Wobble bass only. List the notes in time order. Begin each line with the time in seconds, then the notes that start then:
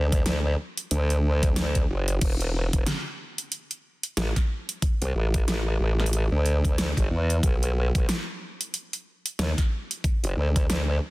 Already playing: D2
0.26 D2
0.91 D2
1.89 F#1
2.21 E1
2.73 E1
4.17 A1
5.02 C2
5.15 A1
5.48 A1
5.80 A1
6.32 D2
6.78 D2
6.97 G1
7.11 E2
7.43 B1
7.95 B1
9.39 D#2
10.23 F#1
10.37 D2
10.69 D2